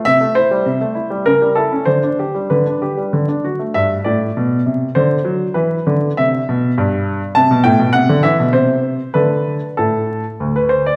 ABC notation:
X:1
M:3/4
L:1/16
Q:1/4=98
K:G
V:1 name="Grand piano"
e2 c6 ^A2 =A2 | c4 B4 z4 | e2 d6 c4 | B4 e6 z2 |
a2 g2 f2 e2 c4 | B4 A4- A B c d |]
V:2 name="Grand piano" clef=bass
C, A, E G, C, A, E G, ^C, G, E ^C | D, D G G, D, D G G, D, D F A, | G,,2 A,,2 B,,2 C,2 D,2 F,2 | E,2 D,2 C,2 B,,2 G,,4 |
C, B,, A,, B,, C, D, E, B,, C,4 | [D,A,A]4 A,,4 D,,4 |]